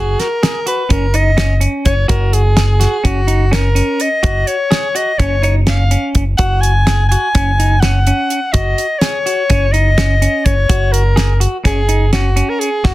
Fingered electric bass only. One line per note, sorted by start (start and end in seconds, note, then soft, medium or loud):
0.00 0.14 F#1 medium
0.90 1.66 F#1 medium
1.86 2.05 F#1 medium
2.10 2.85 F#1 loud
3.05 3.80 F#1 medium
4.24 4.43 F#1 medium
5.19 5.95 F#1 medium
6.15 6.34 F#1 medium
6.39 7.15 F#1 medium
7.35 8.10 F#1 medium
8.54 8.73 F#1 medium
9.51 10.26 F#1 medium
10.46 10.65 F#1 medium
10.70 11.45 F#1 medium
11.65 12.40 F#1 medium
12.85 12.94 F#1 medium